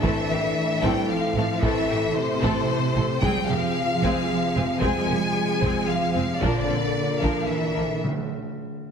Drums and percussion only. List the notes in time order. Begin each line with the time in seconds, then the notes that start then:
0.03 taiko
0.83 taiko
1.62 taiko
2.43 taiko
3.22 taiko
4.02 taiko
4.82 taiko
5.61 taiko
6.41 taiko
7.22 taiko